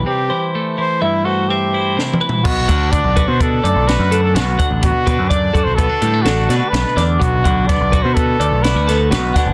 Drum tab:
CC |------------------------------|x-----------------------------|------------------------------|------------------------------|
HH |------------------------------|---x--x--x--x--x--x--x--x--x--|x--x--x--x--x--x--x--x--x--x--|x--x--x--x--x--x--x--x--x--x--|
SD |------------------------o-----|------------------o-----o-----|------------------o--o--o--o--|------o-----------o--o--o--o--|
T2 |--------------------------o---|------------------------------|------------------------------|------------------------------|
FT |----------------------------o-|------------------------------|------------------------------|------------------------------|
BD |------------------------------|o--o--o--o--o--------------o--|o--o--o--o--o-----------------|o--o--o--o--o--------------o--|